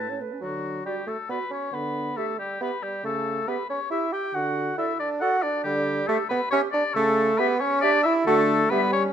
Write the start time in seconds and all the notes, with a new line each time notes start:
Already playing: A2 A4 A5
0.00 A3 B4
0.09 C#4 C#5
0.21 A3 B4
0.32 C#4
0.41 D3 F#3 F#4
0.86 G3 F#4 G4 D5
1.07 A3 A4
1.29 B3 F#4 B4 D5
1.51 C#4 C#5
1.73 D3 B3 B4
2.16 A3 G4 A4 E5
2.39 G3 G4
2.60 B3 G4 B4 E5
2.83 G3 G4
3.04 C#3 A3 A4
3.47 B3 G4 B4 E5
3.70 C#4 C#5
3.91 E4 G4 E5
4.13 G4 G5
4.34 D3 F#4 F#5
4.77 E4 A4 D5 E5
4.99 D4 D5
5.20 F#4 A4 D5 F#5
5.42 D4 D5
5.64 D3 G3 G4
6.07 A3 G4 A4 E5
6.29 B3 B4
6.51 C#4 G4 C#5 E5
6.72 D4 D5
6.95 C#3 A3 A4
7.38 B3 G4 B4 E5
7.59 C#4 C#5
7.81 D4 G4 D5 E5
8.03 E4 E5
8.26 D3 A3 F#4 A4 F#5
8.70 G3 B3 G4 B4 E5
8.93 C#4 C#5